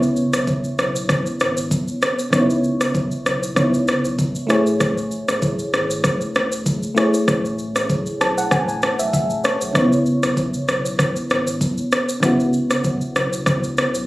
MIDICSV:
0, 0, Header, 1, 4, 480
1, 0, Start_track
1, 0, Key_signature, 4, "minor"
1, 0, Tempo, 618557
1, 1808, Time_signature, 4, 2, 24, 8
1, 10916, End_track
2, 0, Start_track
2, 0, Title_t, "FM electric piano"
2, 0, Program_c, 0, 5
2, 0, Note_on_c, 0, 49, 71
2, 0, Note_on_c, 0, 59, 65
2, 0, Note_on_c, 0, 64, 69
2, 0, Note_on_c, 0, 73, 78
2, 51, Control_c, 0, 64, 127
2, 1768, Note_off_c, 0, 49, 0
2, 1774, Note_off_c, 0, 59, 0
2, 1780, Note_off_c, 0, 64, 0
2, 1787, Note_off_c, 0, 73, 0
2, 1788, Note_on_c, 0, 49, 70
2, 1802, Note_on_c, 0, 59, 65
2, 1814, Note_on_c, 0, 63, 53
2, 1827, Note_on_c, 0, 73, 81
2, 1864, Note_on_c, 0, 64, 66
2, 1866, Note_off_c, 0, 63, 0
2, 2739, Note_off_c, 0, 49, 0
2, 2746, Note_off_c, 0, 59, 0
2, 2757, Note_on_c, 0, 49, 54
2, 2759, Note_off_c, 0, 73, 0
2, 2764, Note_on_c, 0, 59, 51
2, 2770, Note_on_c, 0, 63, 40
2, 2777, Note_on_c, 0, 73, 64
2, 2778, Note_off_c, 0, 64, 0
2, 2821, Note_on_c, 0, 64, 51
2, 2825, Note_off_c, 0, 63, 0
2, 3467, Note_on_c, 0, 57, 76
2, 3471, Note_off_c, 0, 64, 0
2, 3480, Note_on_c, 0, 64, 68
2, 3483, Note_off_c, 0, 49, 0
2, 3486, Note_off_c, 0, 59, 0
2, 3493, Note_off_c, 0, 73, 0
2, 3494, Note_on_c, 0, 68, 70
2, 3497, Control_c, 0, 64, 0
2, 3507, Note_on_c, 0, 73, 83
2, 3628, Control_c, 0, 64, 127
2, 5367, Note_off_c, 0, 57, 0
2, 5373, Note_off_c, 0, 64, 0
2, 5380, Note_off_c, 0, 68, 0
2, 5387, Note_off_c, 0, 73, 0
2, 5390, Note_on_c, 0, 57, 73
2, 5403, Note_on_c, 0, 64, 71
2, 5416, Note_on_c, 0, 68, 68
2, 5429, Note_on_c, 0, 73, 81
2, 6369, Note_on_c, 0, 81, 69
2, 6492, Note_off_c, 0, 81, 0
2, 6501, Note_on_c, 0, 78, 73
2, 6601, Note_off_c, 0, 78, 0
2, 6608, Note_on_c, 0, 80, 74
2, 6729, Note_off_c, 0, 80, 0
2, 6738, Note_on_c, 0, 80, 69
2, 6963, Note_off_c, 0, 80, 0
2, 6979, Note_on_c, 0, 76, 66
2, 7080, Note_off_c, 0, 76, 0
2, 7088, Note_on_c, 0, 76, 74
2, 7288, Note_off_c, 0, 57, 0
2, 7295, Note_off_c, 0, 64, 0
2, 7301, Note_off_c, 0, 68, 0
2, 7308, Note_off_c, 0, 73, 0
2, 7311, Note_off_c, 0, 76, 0
2, 7327, Note_on_c, 0, 73, 73
2, 7548, Note_on_c, 0, 49, 70
2, 7551, Note_off_c, 0, 73, 0
2, 7561, Note_on_c, 0, 59, 67
2, 7574, Note_on_c, 0, 63, 55
2, 7579, Control_c, 0, 64, 0
2, 7587, Note_on_c, 0, 73, 78
2, 7625, Note_on_c, 0, 64, 66
2, 7627, Note_off_c, 0, 63, 0
2, 7699, Control_c, 0, 64, 127
2, 9447, Note_off_c, 0, 49, 0
2, 9454, Note_off_c, 0, 59, 0
2, 9467, Note_off_c, 0, 73, 0
2, 9469, Note_on_c, 0, 49, 74
2, 9483, Note_on_c, 0, 59, 67
2, 9486, Note_off_c, 0, 64, 0
2, 9495, Note_on_c, 0, 64, 64
2, 9508, Note_on_c, 0, 66, 79
2, 10916, Note_off_c, 0, 49, 0
2, 10916, Note_off_c, 0, 59, 0
2, 10916, Note_off_c, 0, 64, 0
2, 10916, Note_off_c, 0, 66, 0
2, 10916, End_track
3, 0, Start_track
3, 0, Title_t, "Sub bass"
3, 0, Program_c, 1, 38
3, 0, Note_on_c, 1, 37, 103
3, 165, Note_off_c, 1, 37, 0
3, 260, Note_on_c, 1, 35, 86
3, 438, Note_off_c, 1, 35, 0
3, 609, Note_on_c, 1, 35, 98
3, 885, Note_off_c, 1, 35, 0
3, 1089, Note_on_c, 1, 32, 92
3, 1365, Note_off_c, 1, 32, 0
3, 1808, Note_on_c, 1, 37, 101
3, 2390, Note_off_c, 1, 37, 0
3, 2528, Note_on_c, 1, 35, 105
3, 2706, Note_off_c, 1, 35, 0
3, 2770, Note_on_c, 1, 37, 94
3, 3045, Note_off_c, 1, 37, 0
3, 3141, Note_on_c, 1, 35, 94
3, 3319, Note_off_c, 1, 35, 0
3, 3488, Note_on_c, 1, 33, 101
3, 3942, Note_off_c, 1, 33, 0
3, 4101, Note_on_c, 1, 33, 89
3, 4279, Note_off_c, 1, 33, 0
3, 4448, Note_on_c, 1, 32, 96
3, 4724, Note_off_c, 1, 32, 0
3, 4930, Note_on_c, 1, 28, 92
3, 5205, Note_off_c, 1, 28, 0
3, 5649, Note_on_c, 1, 33, 116
3, 6230, Note_off_c, 1, 33, 0
3, 6368, Note_on_c, 1, 35, 89
3, 6546, Note_off_c, 1, 35, 0
3, 6609, Note_on_c, 1, 33, 101
3, 6885, Note_off_c, 1, 33, 0
3, 6981, Note_on_c, 1, 35, 83
3, 7061, Note_off_c, 1, 35, 0
3, 7221, Note_on_c, 1, 33, 79
3, 7301, Note_off_c, 1, 33, 0
3, 7462, Note_on_c, 1, 35, 86
3, 7541, Note_off_c, 1, 35, 0
3, 7569, Note_on_c, 1, 37, 102
3, 7845, Note_off_c, 1, 37, 0
3, 7941, Note_on_c, 1, 35, 90
3, 8119, Note_off_c, 1, 35, 0
3, 8289, Note_on_c, 1, 35, 99
3, 8565, Note_off_c, 1, 35, 0
3, 8768, Note_on_c, 1, 32, 92
3, 9044, Note_off_c, 1, 32, 0
3, 9489, Note_on_c, 1, 37, 101
3, 10070, Note_off_c, 1, 37, 0
3, 10208, Note_on_c, 1, 35, 103
3, 10386, Note_off_c, 1, 35, 0
3, 10450, Note_on_c, 1, 37, 92
3, 10725, Note_off_c, 1, 37, 0
3, 10820, Note_on_c, 1, 35, 95
3, 10916, Note_off_c, 1, 35, 0
3, 10916, End_track
4, 0, Start_track
4, 0, Title_t, "Drums"
4, 22, Note_on_c, 9, 82, 55
4, 100, Note_off_c, 9, 82, 0
4, 126, Note_on_c, 9, 82, 55
4, 204, Note_off_c, 9, 82, 0
4, 259, Note_on_c, 9, 82, 87
4, 260, Note_on_c, 9, 37, 90
4, 336, Note_off_c, 9, 82, 0
4, 337, Note_off_c, 9, 37, 0
4, 367, Note_on_c, 9, 82, 61
4, 368, Note_on_c, 9, 36, 92
4, 445, Note_off_c, 9, 82, 0
4, 446, Note_off_c, 9, 36, 0
4, 498, Note_on_c, 9, 82, 49
4, 575, Note_off_c, 9, 82, 0
4, 610, Note_on_c, 9, 82, 50
4, 612, Note_on_c, 9, 37, 81
4, 688, Note_off_c, 9, 82, 0
4, 690, Note_off_c, 9, 37, 0
4, 743, Note_on_c, 9, 82, 91
4, 821, Note_off_c, 9, 82, 0
4, 846, Note_on_c, 9, 37, 79
4, 850, Note_on_c, 9, 36, 108
4, 850, Note_on_c, 9, 82, 65
4, 924, Note_off_c, 9, 37, 0
4, 927, Note_off_c, 9, 36, 0
4, 928, Note_off_c, 9, 82, 0
4, 981, Note_on_c, 9, 82, 50
4, 1058, Note_off_c, 9, 82, 0
4, 1088, Note_on_c, 9, 82, 49
4, 1094, Note_on_c, 9, 37, 87
4, 1166, Note_off_c, 9, 82, 0
4, 1172, Note_off_c, 9, 37, 0
4, 1220, Note_on_c, 9, 82, 82
4, 1298, Note_off_c, 9, 82, 0
4, 1328, Note_on_c, 9, 36, 91
4, 1329, Note_on_c, 9, 82, 80
4, 1406, Note_off_c, 9, 36, 0
4, 1407, Note_off_c, 9, 82, 0
4, 1457, Note_on_c, 9, 82, 54
4, 1535, Note_off_c, 9, 82, 0
4, 1566, Note_on_c, 9, 82, 49
4, 1572, Note_on_c, 9, 37, 86
4, 1644, Note_off_c, 9, 82, 0
4, 1649, Note_off_c, 9, 37, 0
4, 1699, Note_on_c, 9, 82, 89
4, 1776, Note_off_c, 9, 82, 0
4, 1806, Note_on_c, 9, 37, 94
4, 1807, Note_on_c, 9, 82, 74
4, 1808, Note_on_c, 9, 36, 110
4, 1884, Note_off_c, 9, 37, 0
4, 1885, Note_off_c, 9, 82, 0
4, 1886, Note_off_c, 9, 36, 0
4, 1942, Note_on_c, 9, 82, 58
4, 2019, Note_off_c, 9, 82, 0
4, 2046, Note_on_c, 9, 82, 53
4, 2124, Note_off_c, 9, 82, 0
4, 2178, Note_on_c, 9, 82, 89
4, 2179, Note_on_c, 9, 37, 88
4, 2256, Note_off_c, 9, 82, 0
4, 2257, Note_off_c, 9, 37, 0
4, 2286, Note_on_c, 9, 82, 65
4, 2287, Note_on_c, 9, 36, 95
4, 2364, Note_off_c, 9, 82, 0
4, 2365, Note_off_c, 9, 36, 0
4, 2417, Note_on_c, 9, 82, 47
4, 2494, Note_off_c, 9, 82, 0
4, 2530, Note_on_c, 9, 82, 47
4, 2531, Note_on_c, 9, 37, 80
4, 2607, Note_off_c, 9, 82, 0
4, 2609, Note_off_c, 9, 37, 0
4, 2663, Note_on_c, 9, 82, 89
4, 2740, Note_off_c, 9, 82, 0
4, 2765, Note_on_c, 9, 37, 82
4, 2769, Note_on_c, 9, 36, 107
4, 2769, Note_on_c, 9, 82, 67
4, 2843, Note_off_c, 9, 37, 0
4, 2847, Note_off_c, 9, 36, 0
4, 2847, Note_off_c, 9, 82, 0
4, 2901, Note_on_c, 9, 82, 51
4, 2979, Note_off_c, 9, 82, 0
4, 3009, Note_on_c, 9, 82, 48
4, 3015, Note_on_c, 9, 37, 89
4, 3087, Note_off_c, 9, 82, 0
4, 3093, Note_off_c, 9, 37, 0
4, 3141, Note_on_c, 9, 82, 82
4, 3218, Note_off_c, 9, 82, 0
4, 3249, Note_on_c, 9, 36, 91
4, 3250, Note_on_c, 9, 82, 79
4, 3326, Note_off_c, 9, 36, 0
4, 3327, Note_off_c, 9, 82, 0
4, 3378, Note_on_c, 9, 82, 55
4, 3456, Note_off_c, 9, 82, 0
4, 3487, Note_on_c, 9, 82, 48
4, 3493, Note_on_c, 9, 37, 83
4, 3564, Note_off_c, 9, 82, 0
4, 3570, Note_off_c, 9, 37, 0
4, 3620, Note_on_c, 9, 82, 92
4, 3698, Note_off_c, 9, 82, 0
4, 3728, Note_on_c, 9, 37, 94
4, 3729, Note_on_c, 9, 36, 113
4, 3729, Note_on_c, 9, 82, 80
4, 3806, Note_off_c, 9, 37, 0
4, 3807, Note_off_c, 9, 36, 0
4, 3807, Note_off_c, 9, 82, 0
4, 3863, Note_on_c, 9, 82, 58
4, 3940, Note_off_c, 9, 82, 0
4, 3967, Note_on_c, 9, 82, 56
4, 4045, Note_off_c, 9, 82, 0
4, 4100, Note_on_c, 9, 82, 89
4, 4101, Note_on_c, 9, 37, 85
4, 4178, Note_off_c, 9, 37, 0
4, 4178, Note_off_c, 9, 82, 0
4, 4208, Note_on_c, 9, 36, 93
4, 4208, Note_on_c, 9, 82, 65
4, 4285, Note_off_c, 9, 82, 0
4, 4286, Note_off_c, 9, 36, 0
4, 4337, Note_on_c, 9, 82, 49
4, 4414, Note_off_c, 9, 82, 0
4, 4450, Note_on_c, 9, 82, 47
4, 4452, Note_on_c, 9, 37, 85
4, 4527, Note_off_c, 9, 82, 0
4, 4529, Note_off_c, 9, 37, 0
4, 4583, Note_on_c, 9, 82, 88
4, 4660, Note_off_c, 9, 82, 0
4, 4685, Note_on_c, 9, 37, 78
4, 4690, Note_on_c, 9, 36, 104
4, 4690, Note_on_c, 9, 82, 67
4, 4763, Note_off_c, 9, 37, 0
4, 4767, Note_off_c, 9, 36, 0
4, 4767, Note_off_c, 9, 82, 0
4, 4820, Note_on_c, 9, 82, 50
4, 4898, Note_off_c, 9, 82, 0
4, 4928, Note_on_c, 9, 82, 47
4, 4934, Note_on_c, 9, 37, 91
4, 5006, Note_off_c, 9, 82, 0
4, 5012, Note_off_c, 9, 37, 0
4, 5061, Note_on_c, 9, 82, 82
4, 5138, Note_off_c, 9, 82, 0
4, 5169, Note_on_c, 9, 36, 92
4, 5170, Note_on_c, 9, 82, 82
4, 5247, Note_off_c, 9, 36, 0
4, 5247, Note_off_c, 9, 82, 0
4, 5298, Note_on_c, 9, 82, 56
4, 5376, Note_off_c, 9, 82, 0
4, 5408, Note_on_c, 9, 82, 47
4, 5414, Note_on_c, 9, 37, 83
4, 5485, Note_off_c, 9, 82, 0
4, 5491, Note_off_c, 9, 37, 0
4, 5540, Note_on_c, 9, 82, 95
4, 5617, Note_off_c, 9, 82, 0
4, 5648, Note_on_c, 9, 37, 92
4, 5649, Note_on_c, 9, 36, 111
4, 5649, Note_on_c, 9, 82, 76
4, 5726, Note_off_c, 9, 37, 0
4, 5727, Note_off_c, 9, 36, 0
4, 5727, Note_off_c, 9, 82, 0
4, 5783, Note_on_c, 9, 82, 59
4, 5860, Note_off_c, 9, 82, 0
4, 5887, Note_on_c, 9, 82, 55
4, 5964, Note_off_c, 9, 82, 0
4, 6019, Note_on_c, 9, 82, 88
4, 6020, Note_on_c, 9, 37, 86
4, 6097, Note_off_c, 9, 37, 0
4, 6097, Note_off_c, 9, 82, 0
4, 6127, Note_on_c, 9, 82, 64
4, 6128, Note_on_c, 9, 36, 93
4, 6205, Note_off_c, 9, 82, 0
4, 6206, Note_off_c, 9, 36, 0
4, 6257, Note_on_c, 9, 82, 47
4, 6335, Note_off_c, 9, 82, 0
4, 6370, Note_on_c, 9, 82, 47
4, 6372, Note_on_c, 9, 37, 82
4, 6448, Note_off_c, 9, 82, 0
4, 6450, Note_off_c, 9, 37, 0
4, 6502, Note_on_c, 9, 82, 89
4, 6580, Note_off_c, 9, 82, 0
4, 6605, Note_on_c, 9, 37, 80
4, 6609, Note_on_c, 9, 82, 67
4, 6610, Note_on_c, 9, 36, 105
4, 6683, Note_off_c, 9, 37, 0
4, 6687, Note_off_c, 9, 36, 0
4, 6687, Note_off_c, 9, 82, 0
4, 6740, Note_on_c, 9, 82, 51
4, 6817, Note_off_c, 9, 82, 0
4, 6847, Note_on_c, 9, 82, 49
4, 6853, Note_on_c, 9, 37, 90
4, 6925, Note_off_c, 9, 82, 0
4, 6931, Note_off_c, 9, 37, 0
4, 6980, Note_on_c, 9, 82, 85
4, 7057, Note_off_c, 9, 82, 0
4, 7088, Note_on_c, 9, 36, 89
4, 7089, Note_on_c, 9, 82, 81
4, 7166, Note_off_c, 9, 36, 0
4, 7167, Note_off_c, 9, 82, 0
4, 7217, Note_on_c, 9, 82, 57
4, 7295, Note_off_c, 9, 82, 0
4, 7327, Note_on_c, 9, 82, 50
4, 7333, Note_on_c, 9, 37, 81
4, 7405, Note_off_c, 9, 82, 0
4, 7410, Note_off_c, 9, 37, 0
4, 7459, Note_on_c, 9, 82, 95
4, 7537, Note_off_c, 9, 82, 0
4, 7567, Note_on_c, 9, 37, 95
4, 7568, Note_on_c, 9, 36, 110
4, 7568, Note_on_c, 9, 82, 77
4, 7645, Note_off_c, 9, 37, 0
4, 7646, Note_off_c, 9, 36, 0
4, 7646, Note_off_c, 9, 82, 0
4, 7703, Note_on_c, 9, 82, 59
4, 7780, Note_off_c, 9, 82, 0
4, 7806, Note_on_c, 9, 82, 57
4, 7884, Note_off_c, 9, 82, 0
4, 7939, Note_on_c, 9, 82, 92
4, 7940, Note_on_c, 9, 37, 87
4, 8017, Note_off_c, 9, 37, 0
4, 8017, Note_off_c, 9, 82, 0
4, 8047, Note_on_c, 9, 82, 62
4, 8048, Note_on_c, 9, 36, 92
4, 8125, Note_off_c, 9, 82, 0
4, 8126, Note_off_c, 9, 36, 0
4, 8178, Note_on_c, 9, 82, 48
4, 8255, Note_off_c, 9, 82, 0
4, 8290, Note_on_c, 9, 82, 49
4, 8292, Note_on_c, 9, 37, 82
4, 8368, Note_off_c, 9, 82, 0
4, 8370, Note_off_c, 9, 37, 0
4, 8424, Note_on_c, 9, 82, 87
4, 8501, Note_off_c, 9, 82, 0
4, 8527, Note_on_c, 9, 37, 84
4, 8530, Note_on_c, 9, 36, 110
4, 8531, Note_on_c, 9, 82, 71
4, 8605, Note_off_c, 9, 37, 0
4, 8608, Note_off_c, 9, 36, 0
4, 8609, Note_off_c, 9, 82, 0
4, 8662, Note_on_c, 9, 82, 51
4, 8740, Note_off_c, 9, 82, 0
4, 8770, Note_on_c, 9, 82, 48
4, 8776, Note_on_c, 9, 37, 93
4, 8848, Note_off_c, 9, 82, 0
4, 8854, Note_off_c, 9, 37, 0
4, 8902, Note_on_c, 9, 82, 84
4, 8979, Note_off_c, 9, 82, 0
4, 9009, Note_on_c, 9, 36, 87
4, 9011, Note_on_c, 9, 82, 82
4, 9087, Note_off_c, 9, 36, 0
4, 9088, Note_off_c, 9, 82, 0
4, 9139, Note_on_c, 9, 82, 55
4, 9217, Note_off_c, 9, 82, 0
4, 9248, Note_on_c, 9, 82, 49
4, 9254, Note_on_c, 9, 37, 82
4, 9326, Note_off_c, 9, 82, 0
4, 9332, Note_off_c, 9, 37, 0
4, 9380, Note_on_c, 9, 82, 94
4, 9458, Note_off_c, 9, 82, 0
4, 9488, Note_on_c, 9, 37, 87
4, 9489, Note_on_c, 9, 36, 107
4, 9489, Note_on_c, 9, 82, 80
4, 9566, Note_off_c, 9, 37, 0
4, 9567, Note_off_c, 9, 36, 0
4, 9567, Note_off_c, 9, 82, 0
4, 9622, Note_on_c, 9, 82, 56
4, 9700, Note_off_c, 9, 82, 0
4, 9726, Note_on_c, 9, 82, 55
4, 9804, Note_off_c, 9, 82, 0
4, 9859, Note_on_c, 9, 82, 89
4, 9860, Note_on_c, 9, 37, 89
4, 9937, Note_off_c, 9, 37, 0
4, 9937, Note_off_c, 9, 82, 0
4, 9966, Note_on_c, 9, 82, 62
4, 9968, Note_on_c, 9, 36, 94
4, 10044, Note_off_c, 9, 82, 0
4, 10045, Note_off_c, 9, 36, 0
4, 10097, Note_on_c, 9, 82, 51
4, 10175, Note_off_c, 9, 82, 0
4, 10210, Note_on_c, 9, 82, 49
4, 10212, Note_on_c, 9, 37, 83
4, 10288, Note_off_c, 9, 82, 0
4, 10290, Note_off_c, 9, 37, 0
4, 10344, Note_on_c, 9, 82, 89
4, 10421, Note_off_c, 9, 82, 0
4, 10447, Note_on_c, 9, 37, 81
4, 10450, Note_on_c, 9, 36, 109
4, 10451, Note_on_c, 9, 82, 72
4, 10524, Note_off_c, 9, 37, 0
4, 10528, Note_off_c, 9, 36, 0
4, 10528, Note_off_c, 9, 82, 0
4, 10581, Note_on_c, 9, 82, 53
4, 10659, Note_off_c, 9, 82, 0
4, 10690, Note_on_c, 9, 82, 46
4, 10696, Note_on_c, 9, 37, 91
4, 10767, Note_off_c, 9, 82, 0
4, 10773, Note_off_c, 9, 37, 0
4, 10821, Note_on_c, 9, 82, 84
4, 10899, Note_off_c, 9, 82, 0
4, 10916, End_track
0, 0, End_of_file